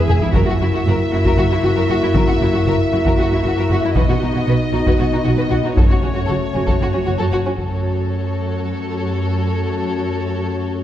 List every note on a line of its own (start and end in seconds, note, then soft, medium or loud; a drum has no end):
0.00 0.17 G#3 medium
0.00 0.17 E4 soft
0.00 0.30 E5 soft
0.08 0.14 E1 soft
0.08 0.14 E2 soft
0.08 0.13 G#4 soft
0.08 0.14 G#4 soft
0.08 taiko low-mid medium
0.20 0.27 E2 soft
0.20 0.27 E4 medium
0.20 0.25 G#4 medium
0.20 taiko low medium
0.33 0.40 F#1 medium
0.33 0.40 F#2 medium
0.33 3.92 A#3 medium
0.33 3.92 E4 medium
0.33 0.38 F#4 medium
0.33 0.40 A#4 medium
0.33 3.92 E5 medium
0.33 taiko medium
0.46 0.53 F#2 soft
0.46 0.51 F#4 soft
0.46 0.54 F#4 soft
0.60 0.65 F#1 soft
0.60 0.65 F#2 soft
0.60 0.66 E4 soft
0.60 0.66 F#4 soft
0.73 0.78 F#2 soft
0.73 0.79 F#4 soft
0.85 0.91 F#1 medium
0.85 0.90 F#2 medium
0.85 0.92 F#4 medium
0.85 0.93 A#4 medium
1.11 1.17 F#1 soft
1.11 1.17 F#2 soft
1.11 1.19 E4 soft
1.11 1.17 F#4 soft
1.24 1.30 F#2 medium
1.24 1.29 F#4 medium
1.24 1.31 A#4 medium
1.24 taiko medium
1.37 1.43 F#1 soft
1.37 1.43 F#2 soft
1.37 1.42 F#4 soft
1.37 1.43 F#4 soft
1.50 1.55 F#2 soft
1.50 1.56 E4 soft
1.50 1.55 F#4 soft
1.63 1.68 F#1 soft
1.63 1.68 F#2 soft
1.63 1.68 F#4 medium
1.63 1.69 F#4 medium
1.76 1.81 F#2 medium
1.76 1.81 F#4 medium
1.76 1.81 A#4 medium
1.89 1.94 F#1 soft
1.89 1.94 F#2 soft
1.89 1.94 F#4 soft
1.89 1.95 F#4 soft
2.02 2.07 F#2 soft
2.02 2.07 E4 soft
2.02 2.07 F#4 soft
2.13 2.20 F#1 medium
2.13 2.20 F#2 medium
2.13 2.19 F#4 medium
2.13 2.20 A#4 medium
2.13 taiko medium
2.27 2.33 F#2 soft
2.27 2.32 F#4 soft
2.27 2.33 F#4 soft
2.40 2.46 F#1 soft
2.40 2.46 F#2 soft
2.40 2.46 E4 soft
2.40 2.45 F#4 soft
2.53 2.59 F#2 soft
2.53 2.58 F#4 soft
2.53 2.60 F#4 soft
2.65 2.72 F#1 medium
2.65 2.71 F#2 medium
2.65 2.71 F#4 medium
2.65 2.72 A#4 medium
2.92 2.98 F#1 soft
2.92 2.97 F#2 soft
2.92 2.98 E4 soft
2.92 2.98 F#4 soft
3.05 3.10 F#2 medium
3.05 3.10 F#4 medium
3.05 3.11 A#4 medium
3.05 taiko medium
3.18 3.24 F#1 soft
3.18 3.24 F#2 soft
3.18 3.23 F#4 medium
3.18 3.26 F#4 soft
3.31 3.36 F#2 soft
3.31 3.37 E4 soft
3.31 3.36 F#4 soft
3.44 3.49 F#1 soft
3.44 3.49 F#2 soft
3.44 3.49 F#4 soft
3.44 3.51 F#4 medium
3.56 3.62 F#2 medium
3.56 3.62 F#4 medium
3.56 3.63 A#4 medium
3.69 3.74 F#1 soft
3.69 3.76 F#2 soft
3.69 3.75 F#4 medium
3.69 3.77 F#4 medium
3.82 3.89 F#2 soft
3.82 3.89 E4 soft
3.82 3.87 F#4 soft
3.95 4.01 B1 medium
3.95 4.01 B2 medium
3.95 5.73 B3 medium
3.95 5.77 D#4 medium
3.95 4.01 F#4 medium
3.95 4.01 B4 medium
3.95 5.73 D#5 medium
3.95 taiko medium
4.09 4.14 B2 soft
4.09 4.14 F#4 soft
4.09 4.15 F#4 soft
4.20 4.27 B1 soft
4.20 4.27 B2 soft
4.20 4.27 D#4 soft
4.20 4.26 F#4 soft
4.33 4.40 B2 soft
4.33 4.39 F#4 soft
4.33 4.41 F#4 soft
4.47 4.53 B1 medium
4.47 4.52 B2 medium
4.47 4.52 F#4 medium
4.47 4.53 B4 medium
4.72 4.78 B1 soft
4.72 4.78 B2 soft
4.72 4.79 D#4 soft
4.72 4.78 F#4 soft
4.86 4.91 B2 medium
4.86 4.92 F#4 medium
4.86 4.92 B4 soft
4.86 taiko medium
4.99 5.05 B1 soft
4.99 5.05 B2 soft
4.99 5.04 F#4 soft
4.99 5.05 F#4 soft
5.12 5.17 B2 soft
5.12 5.17 D#4 soft
5.12 5.18 F#4 soft
5.24 5.31 B1 soft
5.24 5.30 B2 soft
5.24 5.30 F#4 soft
5.24 5.32 F#4 soft
5.37 5.43 B2 medium
5.37 5.45 F#4 soft
5.37 5.42 B4 soft
5.50 5.56 B1 soft
5.50 5.56 B2 soft
5.50 5.55 F#4 soft
5.50 5.58 F#4 soft
5.64 5.69 B2 soft
5.64 5.69 D#4 soft
5.64 5.70 F#4 soft
5.77 5.83 F#1 medium
5.77 5.82 F#2 medium
5.77 7.33 A3 soft
5.77 7.29 C#4 soft
5.77 5.82 F#4 soft
5.77 5.82 A4 medium
5.77 7.35 C#5 soft
5.77 taiko medium
5.89 5.94 F#2 soft
5.89 5.95 F#4 soft
6.02 6.09 F#1 soft
6.02 6.07 F#2 soft
6.02 6.07 C#4 soft
6.02 6.08 F#4 soft
6.13 6.20 F#2 soft
6.13 6.19 F#4 soft
6.13 6.22 F#4 soft
6.26 6.35 F#1 medium
6.26 6.33 F#2 soft
6.26 6.34 F#4 medium
6.26 6.32 A4 medium
6.53 6.60 F#1 soft
6.53 6.59 F#2 soft
6.53 6.59 C#4 soft
6.53 6.60 F#4 soft
6.65 6.72 F#2 medium
6.65 6.73 F#4 soft
6.65 6.71 A4 soft
6.65 taiko medium
6.80 6.86 F#1 soft
6.80 6.85 F#2 soft
6.80 6.86 F#4 soft
6.80 6.87 F#4 soft
6.93 6.99 F#2 soft
6.93 6.98 C#4 soft
6.93 6.99 F#4 soft
7.06 7.12 F#1 soft
7.06 7.11 F#2 soft
7.06 7.11 F#4 soft
7.06 7.12 F#4 soft
7.18 7.24 F#2 medium
7.18 7.24 F#4 soft
7.18 7.23 A4 medium
7.32 7.37 F#1 soft
7.32 7.37 F#2 soft
7.32 7.37 F#4 soft
7.32 7.38 F#4 soft
7.44 7.50 F#2 soft
7.44 7.50 C#4 soft
7.44 7.50 F#4 soft
7.57 8.06 F#1 soft
7.57 10.84 F#2 soft
7.57 10.84 A3 soft
7.57 10.84 C#4 soft
7.57 10.84 F#4 soft
7.57 10.84 A4 soft
7.57 10.84 C#5 soft
7.57 taiko soft